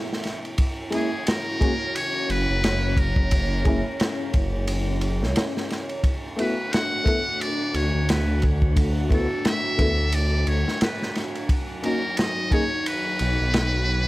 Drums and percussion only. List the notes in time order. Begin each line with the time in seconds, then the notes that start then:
0.13 snare
0.24 snare, ride
0.45 ride
0.58 kick, ride
0.92 ride
1.27 snare, ride
1.61 kick, ride
1.96 ride
2.30 ride
2.64 snare, ride
2.97 kick, ride
3.16 kick
3.31 kick, ride
3.65 kick, ride
4.00 snare, ride
4.34 kick, ride
4.67 ride
5.01 ride
5.23 snare
5.36 snare, ride
5.57 snare
5.70 snare, ride
5.89 ride
6.04 kick, ride
6.39 ride
6.73 snare, ride
7.06 kick, ride
7.41 ride
7.74 ride
8.09 snare, ride
8.42 kick, ride
8.62 kick
8.77 kick, ride
9.11 kick, ride
9.45 snare, ride
9.79 kick, ride
10.12 ride
10.47 ride
10.68 snare
10.81 snare, ride
11.02 snare
11.15 snare, ride
11.35 ride
11.49 kick, ride
11.83 ride
12.17 snare, ride
12.51 kick, ride
12.86 ride
13.19 ride
13.54 snare, ride